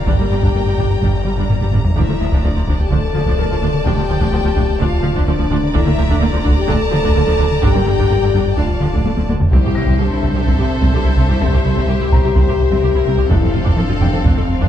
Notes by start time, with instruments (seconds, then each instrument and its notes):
Already playing: felt piano G4 G5 A6, violin section D5
0.06 double bass section G1, detuned saw bass G1, cello section G2, analog synth bass G2, viola section G3 D4, french horn section G4, violin section G5 A#5, taiko
0.19 cello section G2, analog synth bass G3, viola section G3 A#3
0.31 double bass section G1, cello section G2, analog synth bass G2, viola section G3
0.42 analog synth bass G2, cello section G2, viola section G3 D4, taiko
0.54 double bass section G1, analog synth bass G2, cello section G2, viola section G3 A#3
0.66 cello section G2, analog synth bass G2, viola section G3
0.78 double bass section G1, analog synth bass G2, cello section G2, viola section G3 D4, taiko
0.90 analog synth bass G2
1.01 double bass section G1, cello section G2, analog synth bass G2, viola section G3 D4, taiko
1.13 analog synth bass G2
1.25 double bass section G1, cello section G2, analog synth bass G3, viola section G3
1.37 cello section G2, analog synth bass G2, viola section G3 D4, taiko
1.49 double bass section G1, cello section G2, analog synth bass G2, viola section G3 A#3, taiko low-mid
1.61 cello section G2, analog synth bass G2, viola section G3, taiko low-mid
1.73 double bass section G1, cello section G2, analog synth bass G2, viola section G3 D4, taiko low-mid
1.85 analog synth bass G3, taiko low
1.96 detuned saw bass D1, double bass section D2, cello section D2, analog synth bass D2, viola section F3 D4, french horn section E4, violin section D5 E5, taiko
2.08 cello section D2, analog synth bass D3, viola section F3 A3
2.20 cello section D2, double bass section D2, analog synth bass D2, viola section F3
2.32 cello section D2, analog synth bass D2, viola section F3 D4, taiko
2.43 cello section D2, analog synth bass D2, double bass section D2, viola section F3 A3, french horn section D4, violin section D5
2.55 cello section D2, analog synth bass D2, viola section F3
2.67 cello section D2, double bass section D2, analog synth bass D2, viola section F3 D4, taiko
2.79 analog synth bass D2, french horn section G4, violin section G5
2.91 cello section D2, double bass section D2, analog synth bass D2, viola section F3 D4, french horn section A4, violin section A5, taiko
3.03 analog synth bass D2
3.14 cello section D2, double bass section D2, analog synth bass D3, viola section F3
3.26 cello section D2, analog synth bass D2, viola section F3 D4, taiko
3.38 cello section D2, analog synth bass D2, double bass section D2, viola section F3 A3, felt piano A#4
3.50 cello section D2, analog synth bass D2, viola section F3
3.61 cello section D2, analog synth bass D2, double bass section D2, viola section F3 D4
3.74 analog synth bass D3
3.85 cello section D2, analog synth bass D2, double bass section D2, viola section F3 D4, french horn section G4, violin section G5, taiko
3.96 cello section D2, analog synth bass D3, viola section F3 A3
4.09 cello section D2, analog synth bass D2, double bass section D2, viola section F3
4.20 cello section D2, analog synth bass D2, viola section F3 D4, taiko
4.32 cello section D2, analog synth bass D2, double bass section D2, viola section F3 A3, felt piano G4 G5
4.44 cello section D2, analog synth bass D2, viola section F3
4.55 cello section D2, analog synth bass D2, double bass section D2, viola section F3 D4, taiko
4.69 analog synth bass D2
4.80 cello section D2, double bass section D2, analog synth bass D2, viola section F3 D4, french horn section F4, violin section F5, taiko
4.93 analog synth bass D2
5.03 cello section D2, double bass section D2, analog synth bass D3, viola section F3
5.15 cello section D2, analog synth bass D2, viola section F3 D4, taiko
5.27 analog synth bass D2, cello section D2, double bass section D2, viola section F3 A3, french horn section D4, violin section D5
5.38 cello section D2, analog synth bass D2, viola section F3
5.50 analog synth bass D2, double bass section D2, cello section D2, viola section F3 D4
5.63 analog synth bass D3
5.74 analog synth bass D2, double bass section D2, cello section D2, viola section D3 D4, french horn section E4, violin section D5 E5 A#5, taiko
5.86 cello section D2, viola section D3 A#3, analog synth bass D3
5.97 analog synth bass D2, cello section D2, double bass section D2, viola section D3 F3
6.09 analog synth bass D2, cello section D2, viola section D3 D4, taiko
6.21 analog synth bass D2, cello section D2, double bass section D2, viola section D3 A#3, french horn section D4, violin section D5
6.33 analog synth bass D2, cello section D2, viola section D3 F3
6.43 analog synth bass D2, cello section D2, double bass section D2, viola section D3 D4, taiko
6.58 analog synth bass D2, french horn section G4, violin section G5
6.68 analog synth bass D2, cello section D2, double bass section D2, viola section D3 D4, french horn section A4, violin section A5, taiko
6.81 analog synth bass D2
6.91 cello section D2, double bass section D2, viola section D3 F3, analog synth bass D3
7.04 cello section D2, analog synth bass D2, viola section D3 D4, taiko
7.15 analog synth bass D2, double bass section D2, cello section D2, viola section D3 A#3
7.26 analog synth bass D2, cello section D2, viola section D3 F3
7.38 double bass section D2, cello section D2, analog synth bass D2, viola section D3 D4
7.51 analog synth bass D3
7.62 double bass section G1, detuned saw bass G1, analog synth bass G2, cello section G2, viola section D3 D4, french horn section G4, violin section G5, taiko
7.74 cello section G2, viola section D3 A#3, analog synth bass G3
7.87 double bass section G1, cello section G2, analog synth bass G2, viola section D3 G3
7.99 cello section G2, analog synth bass G2, viola section D3 D4, taiko
8.10 double bass section G1, analog synth bass G2, cello section G2, viola section D3 A#3
8.22 cello section G2, analog synth bass G2, viola section D3 G3
8.34 double bass section G1, cello section G2, analog synth bass G2, viola section D3 D4, taiko
8.46 analog synth bass G2
8.57 detuned saw bass D1, analog synth bass D2, double bass section D2, cello section D2, viola section D3 D4, french horn section F4, violin section F5 A5, taiko
8.68 analog synth bass D2
8.80 double bass section D2, cello section D2, analog synth bass D3, viola section D3 F3
8.93 analog synth bass D2, cello section D2, viola section D3 D4, taiko
9.04 analog synth bass D2, double bass section D2, cello section D2, viola section D3 A3, taiko high
9.16 analog synth bass D2, cello section D2, viola section D3 F3, taiko high
9.29 double bass section D2, analog synth bass D2, cello section D2, viola section D3 D4, taiko high
9.40 analog synth bass D3, taiko low
9.51 detuned saw bass C2, analog synth bass C2, double bass section C2, cello section C2, viola section C4 C5, french horn section E4, violin section G4 E5, taiko
9.63 analog synth bass C2, cello section C2, viola section G4, taiko low-mid
9.75 analog synth bass C2, double bass section C2, cello section C2, viola section E4, felt piano A#6
9.86 analog synth bass C2, cello section C2, viola section C4, taiko
9.99 cello section C2, double bass section C2, analog synth bass C3, french horn section D4, viola section G4, violin section A4
10.10 analog synth bass C2, cello section C2, viola section E4
10.22 analog synth bass C2, double bass section C2, cello section C2, viola section C4, taiko
10.34 cello section C2, analog synth bass C3, viola section G4
10.46 double bass section C2, analog synth bass C2, cello section C2, french horn section C4, viola section C4, taiko
10.58 analog synth bass C2, cello section C2, viola section G4, taiko low-mid
10.70 analog synth bass C2
10.81 analog synth bass C2, cello section C2, viola section C4, taiko
10.93 analog synth bass C2, double bass section C2, cello section C2, french horn section D4, viola section G4, felt piano A4 A5
11.04 analog synth bass C2, cello section C2, viola section E4
11.16 analog synth bass C2, double bass section C2, cello section C2, viola section C4
11.29 analog synth bass C2, cello section C2, french horn section E4, viola section G4, taiko low-mid
11.40 analog synth bass C2, double bass section C2, cello section C2, viola section C4, french horn section G4, taiko
11.53 cello section C2, analog synth bass C2, viola section G4, taiko low-mid
11.65 cello section C2, analog synth bass C2, double bass section C2, viola section E4
11.76 analog synth bass C2, cello section C2, viola section C4, taiko
11.88 double bass section C2, cello section C2, analog synth bass C3, violin section G4, viola section G4
12.00 cello section C2, analog synth bass C2, viola section E4
12.12 cello section C2, double bass section C2, analog synth bass C2, viola section C4, felt piano A#5, taiko
12.24 cello section C2, analog synth bass C3, viola section G4
12.35 double bass section C2, cello section C2, analog synth bass C2, viola section C4, violin section C5, taiko
12.47 cello section C2, analog synth bass C2, viola section G4, taiko low-mid
12.60 analog synth bass C2
12.70 analog synth bass C2, cello section C2, viola section C4, taiko
12.83 analog synth bass C2, cello section C2, double bass section C2, viola section G4, violin section A#4
12.95 analog synth bass C2, cello section C2, viola section E4
13.07 analog synth bass C2, cello section C2, double bass section C2, viola section C4
13.18 analog synth bass C2, cello section C2, viola section G4, taiko low-mid
13.29 detuned saw bass F1, double bass section F1, analog synth bass F2, cello section F2, viola section C4 D4, french horn section E4, violin section A4 F5, taiko
13.41 cello section F2, analog synth bass F2, viola section A4, taiko low-mid
13.53 double bass section F1, analog synth bass F2, cello section F2, viola section F4
13.64 cello section F2, analog synth bass F2, viola section D4, taiko
13.77 double bass section F1, cello section F2, analog synth bass F3, french horn section D4, viola section A4
13.89 cello section F2, analog synth bass F2, viola section F4
14.00 double bass section F1, cello section F2, analog synth bass F2, viola section D4, felt piano G5, taiko
14.12 cello section F2, analog synth bass F3, viola section A4
14.25 double bass section F1, cello section F2, analog synth bass F2, french horn section C4, viola section D4, taiko
14.36 analog synth bass F2, cello section F2, viola section A4, taiko low-mid
14.48 analog synth bass F2
14.59 analog synth bass F2, cello section F2, viola section D4, taiko